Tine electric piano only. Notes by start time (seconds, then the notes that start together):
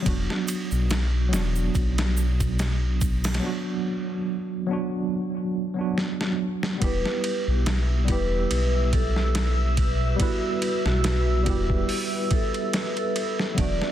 0.02 F#3 B3
0.06 D4 F#4
1.29 F#3 B3
1.33 D4 F#4
3.39 F#3 B3
3.44 D4 F#4
4.67 F#3 B3
4.71 D4 F#4
5.74 F#3 B3
5.78 D4 F#4
6.78 G3 B3
6.82 E4 G4
8.05 G3 B3
8.09 E4 G4
10.16 G3 B3
10.20 E4 B4
11.43 G3 B3
11.47 E4 G4
13.54 F#3 B3
13.59 D4 F#4